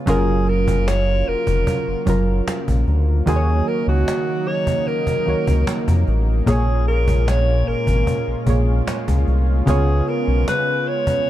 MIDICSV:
0, 0, Header, 1, 6, 480
1, 0, Start_track
1, 0, Tempo, 800000
1, 43, Time_signature, 4, 2, 24, 8
1, 6779, End_track
2, 0, Start_track
2, 0, Title_t, "Alto saxophone"
2, 0, Program_c, 0, 65
2, 49, Note_on_c, 0, 68, 87
2, 291, Note_on_c, 0, 70, 93
2, 300, Note_off_c, 0, 68, 0
2, 527, Note_on_c, 0, 73, 103
2, 536, Note_off_c, 0, 70, 0
2, 769, Note_on_c, 0, 70, 93
2, 778, Note_off_c, 0, 73, 0
2, 1246, Note_off_c, 0, 70, 0
2, 1968, Note_on_c, 0, 68, 93
2, 2205, Note_on_c, 0, 70, 90
2, 2214, Note_off_c, 0, 68, 0
2, 2324, Note_off_c, 0, 70, 0
2, 2328, Note_on_c, 0, 66, 98
2, 2685, Note_on_c, 0, 73, 103
2, 2694, Note_off_c, 0, 66, 0
2, 2925, Note_on_c, 0, 70, 94
2, 2934, Note_off_c, 0, 73, 0
2, 3644, Note_off_c, 0, 70, 0
2, 3889, Note_on_c, 0, 68, 91
2, 4110, Note_off_c, 0, 68, 0
2, 4127, Note_on_c, 0, 70, 92
2, 4367, Note_on_c, 0, 73, 103
2, 4376, Note_off_c, 0, 70, 0
2, 4605, Note_on_c, 0, 70, 99
2, 4614, Note_off_c, 0, 73, 0
2, 5084, Note_off_c, 0, 70, 0
2, 5812, Note_on_c, 0, 68, 93
2, 6051, Note_on_c, 0, 70, 91
2, 6060, Note_off_c, 0, 68, 0
2, 6287, Note_off_c, 0, 70, 0
2, 6290, Note_on_c, 0, 71, 101
2, 6528, Note_on_c, 0, 73, 107
2, 6537, Note_off_c, 0, 71, 0
2, 6779, Note_off_c, 0, 73, 0
2, 6779, End_track
3, 0, Start_track
3, 0, Title_t, "Synth keys"
3, 0, Program_c, 1, 88
3, 0, Control_c, 1, 64, 127
3, 36, Note_on_c, 1, 54, 91
3, 43, Note_on_c, 1, 61, 84
3, 50, Note_on_c, 1, 65, 87
3, 52, Control_c, 1, 64, 0
3, 57, Note_on_c, 1, 70, 101
3, 174, Control_c, 1, 64, 127
3, 872, Note_off_c, 1, 54, 0
3, 875, Note_off_c, 1, 61, 0
3, 879, Note_off_c, 1, 65, 0
3, 883, Note_off_c, 1, 70, 0
3, 1235, Note_on_c, 1, 54, 69
3, 1243, Note_on_c, 1, 61, 67
3, 1250, Note_on_c, 1, 65, 65
3, 1257, Note_on_c, 1, 70, 80
3, 1864, Note_off_c, 1, 54, 0
3, 1867, Note_off_c, 1, 61, 0
3, 1871, Note_off_c, 1, 65, 0
3, 1875, Note_off_c, 1, 70, 0
3, 1955, Note_on_c, 1, 51, 97
3, 1962, Note_on_c, 1, 58, 83
3, 1970, Control_c, 1, 64, 0
3, 1970, Note_on_c, 1, 66, 85
3, 1977, Note_on_c, 1, 72, 80
3, 2009, Note_off_c, 1, 72, 0
3, 2016, Note_on_c, 1, 73, 99
3, 2075, Control_c, 1, 64, 127
3, 2792, Note_off_c, 1, 51, 0
3, 2795, Note_off_c, 1, 58, 0
3, 2799, Note_off_c, 1, 66, 0
3, 2822, Note_off_c, 1, 73, 0
3, 3156, Note_on_c, 1, 51, 70
3, 3163, Note_on_c, 1, 58, 68
3, 3170, Note_on_c, 1, 66, 64
3, 3178, Note_on_c, 1, 73, 78
3, 3784, Note_off_c, 1, 51, 0
3, 3787, Note_off_c, 1, 58, 0
3, 3791, Note_off_c, 1, 66, 0
3, 3795, Note_off_c, 1, 73, 0
3, 3875, Note_on_c, 1, 46, 93
3, 3883, Note_on_c, 1, 58, 85
3, 3890, Note_on_c, 1, 68, 85
3, 3891, Control_c, 1, 64, 0
3, 3898, Note_on_c, 1, 73, 103
3, 4007, Control_c, 1, 64, 127
3, 4712, Note_off_c, 1, 46, 0
3, 4715, Note_off_c, 1, 58, 0
3, 4719, Note_off_c, 1, 68, 0
3, 4723, Note_off_c, 1, 73, 0
3, 5077, Note_on_c, 1, 46, 68
3, 5084, Note_on_c, 1, 58, 64
3, 5091, Note_on_c, 1, 68, 67
3, 5098, Note_on_c, 1, 73, 81
3, 5704, Note_off_c, 1, 46, 0
3, 5708, Note_off_c, 1, 58, 0
3, 5712, Note_off_c, 1, 68, 0
3, 5715, Note_off_c, 1, 73, 0
3, 5796, Note_on_c, 1, 49, 95
3, 5803, Note_on_c, 1, 59, 86
3, 5810, Control_c, 1, 64, 0
3, 5810, Note_on_c, 1, 65, 85
3, 5818, Note_on_c, 1, 73, 104
3, 5913, Control_c, 1, 64, 127
3, 6632, Note_off_c, 1, 49, 0
3, 6636, Note_off_c, 1, 59, 0
3, 6639, Note_off_c, 1, 65, 0
3, 6643, Note_off_c, 1, 73, 0
3, 6779, End_track
4, 0, Start_track
4, 0, Title_t, "Analog synth pad"
4, 0, Program_c, 2, 89
4, 44, Note_on_c, 2, 49, 79
4, 44, Note_on_c, 2, 54, 72
4, 44, Note_on_c, 2, 58, 69
4, 44, Note_on_c, 2, 65, 86
4, 1944, Note_off_c, 2, 49, 0
4, 1944, Note_off_c, 2, 54, 0
4, 1945, Note_off_c, 2, 65, 0
4, 1965, Note_on_c, 2, 49, 74
4, 1965, Note_on_c, 2, 63, 88
4, 1966, Note_on_c, 2, 54, 70
4, 3865, Note_off_c, 2, 49, 0
4, 3865, Note_off_c, 2, 54, 0
4, 3865, Note_off_c, 2, 63, 0
4, 3884, Note_on_c, 2, 56, 75
4, 3885, Note_on_c, 2, 61, 76
4, 3885, Note_on_c, 2, 65, 90
4, 5780, Note_off_c, 2, 58, 0
4, 5805, Note_on_c, 2, 59, 74
4, 6779, Note_off_c, 2, 56, 0
4, 6779, Note_off_c, 2, 59, 0
4, 6779, Note_off_c, 2, 61, 0
4, 6779, Note_off_c, 2, 65, 0
4, 6779, End_track
5, 0, Start_track
5, 0, Title_t, "Analog synth bass"
5, 0, Program_c, 3, 38
5, 45, Note_on_c, 3, 30, 95
5, 740, Note_off_c, 3, 30, 0
5, 767, Note_on_c, 3, 29, 50
5, 814, Note_off_c, 3, 29, 0
5, 883, Note_on_c, 3, 29, 92
5, 987, Note_off_c, 3, 29, 0
5, 1125, Note_on_c, 3, 30, 48
5, 1173, Note_off_c, 3, 30, 0
5, 1242, Note_on_c, 3, 30, 91
5, 1450, Note_off_c, 3, 30, 0
5, 1609, Note_on_c, 3, 34, 86
5, 1710, Note_off_c, 3, 34, 0
5, 1725, Note_on_c, 3, 38, 98
5, 1932, Note_off_c, 3, 38, 0
5, 1965, Note_on_c, 3, 39, 102
5, 2172, Note_off_c, 3, 39, 0
5, 2324, Note_on_c, 3, 37, 94
5, 2428, Note_off_c, 3, 37, 0
5, 3165, Note_on_c, 3, 37, 48
5, 3213, Note_off_c, 3, 37, 0
5, 3287, Note_on_c, 3, 37, 84
5, 3389, Note_off_c, 3, 37, 0
5, 3528, Note_on_c, 3, 41, 84
5, 3630, Note_off_c, 3, 41, 0
5, 3646, Note_on_c, 3, 33, 94
5, 3852, Note_off_c, 3, 33, 0
5, 3885, Note_on_c, 3, 34, 106
5, 4580, Note_off_c, 3, 34, 0
5, 4606, Note_on_c, 3, 32, 45
5, 4654, Note_off_c, 3, 32, 0
5, 4723, Note_on_c, 3, 32, 90
5, 4827, Note_off_c, 3, 32, 0
5, 4966, Note_on_c, 3, 34, 51
5, 5013, Note_off_c, 3, 34, 0
5, 5081, Note_on_c, 3, 34, 95
5, 5290, Note_off_c, 3, 34, 0
5, 5449, Note_on_c, 3, 37, 95
5, 5550, Note_off_c, 3, 37, 0
5, 5565, Note_on_c, 3, 36, 98
5, 5772, Note_off_c, 3, 36, 0
5, 5804, Note_on_c, 3, 37, 99
5, 6012, Note_off_c, 3, 37, 0
5, 6166, Note_on_c, 3, 35, 91
5, 6269, Note_off_c, 3, 35, 0
5, 6779, End_track
6, 0, Start_track
6, 0, Title_t, "Cajon"
6, 43, Note_on_c, 9, 36, 116
6, 103, Note_off_c, 9, 36, 0
6, 282, Note_on_c, 9, 38, 29
6, 342, Note_off_c, 9, 38, 0
6, 406, Note_on_c, 9, 36, 97
6, 466, Note_off_c, 9, 36, 0
6, 526, Note_on_c, 9, 38, 114
6, 586, Note_off_c, 9, 38, 0
6, 882, Note_on_c, 9, 36, 83
6, 942, Note_off_c, 9, 36, 0
6, 1002, Note_on_c, 9, 36, 94
6, 1062, Note_off_c, 9, 36, 0
6, 1240, Note_on_c, 9, 36, 95
6, 1300, Note_off_c, 9, 36, 0
6, 1485, Note_on_c, 9, 38, 117
6, 1545, Note_off_c, 9, 38, 0
6, 1607, Note_on_c, 9, 36, 88
6, 1667, Note_off_c, 9, 36, 0
6, 1723, Note_on_c, 9, 38, 34
6, 1783, Note_off_c, 9, 38, 0
6, 1963, Note_on_c, 9, 36, 114
6, 2023, Note_off_c, 9, 36, 0
6, 2203, Note_on_c, 9, 38, 30
6, 2263, Note_off_c, 9, 38, 0
6, 2447, Note_on_c, 9, 38, 115
6, 2507, Note_off_c, 9, 38, 0
6, 2801, Note_on_c, 9, 36, 89
6, 2861, Note_off_c, 9, 36, 0
6, 2923, Note_on_c, 9, 38, 37
6, 2983, Note_off_c, 9, 38, 0
6, 3041, Note_on_c, 9, 36, 81
6, 3101, Note_off_c, 9, 36, 0
6, 3164, Note_on_c, 9, 38, 38
6, 3224, Note_off_c, 9, 38, 0
6, 3285, Note_on_c, 9, 36, 93
6, 3345, Note_off_c, 9, 36, 0
6, 3404, Note_on_c, 9, 38, 119
6, 3464, Note_off_c, 9, 38, 0
6, 3527, Note_on_c, 9, 36, 89
6, 3587, Note_off_c, 9, 36, 0
6, 3642, Note_on_c, 9, 38, 35
6, 3702, Note_off_c, 9, 38, 0
6, 3883, Note_on_c, 9, 36, 111
6, 3943, Note_off_c, 9, 36, 0
6, 4123, Note_on_c, 9, 38, 30
6, 4183, Note_off_c, 9, 38, 0
6, 4246, Note_on_c, 9, 36, 99
6, 4306, Note_off_c, 9, 36, 0
6, 4367, Note_on_c, 9, 38, 124
6, 4427, Note_off_c, 9, 38, 0
6, 4722, Note_on_c, 9, 36, 88
6, 4782, Note_off_c, 9, 36, 0
6, 4842, Note_on_c, 9, 36, 91
6, 4902, Note_off_c, 9, 36, 0
6, 5080, Note_on_c, 9, 36, 91
6, 5140, Note_off_c, 9, 36, 0
6, 5325, Note_on_c, 9, 38, 113
6, 5385, Note_off_c, 9, 38, 0
6, 5447, Note_on_c, 9, 36, 87
6, 5507, Note_off_c, 9, 36, 0
6, 5562, Note_on_c, 9, 38, 35
6, 5622, Note_off_c, 9, 38, 0
6, 5803, Note_on_c, 9, 36, 120
6, 5863, Note_off_c, 9, 36, 0
6, 6042, Note_on_c, 9, 38, 30
6, 6102, Note_off_c, 9, 38, 0
6, 6286, Note_on_c, 9, 38, 114
6, 6346, Note_off_c, 9, 38, 0
6, 6642, Note_on_c, 9, 36, 92
6, 6702, Note_off_c, 9, 36, 0
6, 6779, End_track
0, 0, End_of_file